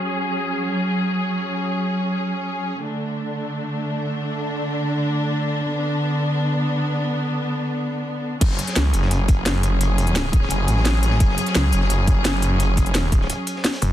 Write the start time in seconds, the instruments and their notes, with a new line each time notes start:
Already playing: string section F#3 C#4 G#4
2.83 string section D3 A3 D4
5.62 string section B3
8.41 detuned saw bass F#1, string section F#3 C#4 G#4, kick, closed hi-hat, crash
8.50 snare
8.59 closed hi-hat
8.67 snare, closed hi-hat
8.76 detuned saw bass C#2, snare, closed hi-hat
8.93 detuned saw bass F#1, closed hi-hat
9.02 snare
9.11 detuned saw bass F#1, closed hi-hat
9.28 kick, closed hi-hat
9.46 snare, closed hi-hat
9.63 closed hi-hat
9.81 closed hi-hat
9.98 closed hi-hat
10.07 closed hi-hat
10.15 snare, closed hi-hat
10.33 kick, closed hi-hat
10.42 snare
10.50 detuned saw bass F#1, closed hi-hat
10.68 detuned saw bass A1, closed hi-hat
10.77 snare
10.85 snare, closed hi-hat
10.94 snare
11.03 closed hi-hat
11.11 snare
11.20 kick, closed hi-hat
11.29 snare
11.38 closed hi-hat
11.46 snare, closed hi-hat
11.55 detuned saw bass C#2, snare, closed hi-hat
11.72 detuned saw bass F#1, closed hi-hat
11.81 snare
11.90 detuned saw bass F#1, closed hi-hat
12.07 kick, closed hi-hat
12.25 snare, closed hi-hat
12.42 closed hi-hat
12.60 closed hi-hat
12.77 kick, closed hi-hat
12.86 closed hi-hat
12.90 detuned saw bass E1
12.94 snare, closed hi-hat
13.12 detuned saw bass D1, kick, closed hi-hat
13.21 snare
13.30 closed hi-hat
13.47 closed hi-hat
13.56 snare
13.65 snare, closed hi-hat
13.73 snare, closed hi-hat
13.82 detuned saw bass F#1, closed hi-hat